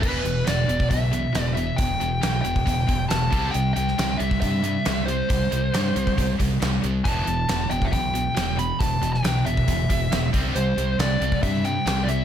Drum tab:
CC |x---------------|----------------|----------------|----------------|
HH |--x-x-x-x-x-x-x-|x-x-x-x-x-x-x-x-|x-x-x-x-x-x-x-x-|x-x-x-x-x-x-x-x-|
SD |----o-------o---|----o-------o---|---oo-------o---|----o-------o---|
BD |o------oo-------|o------oo-o---o-|-------oo-------|o------oo-o-----|

CC |----------------|----------------|----------------|
HH |x-x-x-x-x-x-x-x-|x-x-x-x-x-x-x-x-|x-x-x-x-x-x-x-x-|
SD |----o-------o---|---oo-------o---|----o-------o---|
BD |o------oo-------|o------oo-o---o-|-------oo-------|